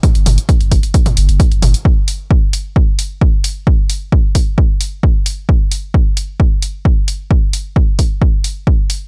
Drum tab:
HH |xxoxxxoxxxoxxxox|--o---o---o---o-|--o---o---o---o-|--o---o---o---o-|
T2 |o-o------o----o-|----------------|----------------|----------------|
BD |o---o-o-o---o---|o---o---o---o---|o---o-o-o---o---|o---o---o---o---|

HH |--o---o---o---o-|
T2 |----------------|
BD |o---o-o-o---o---|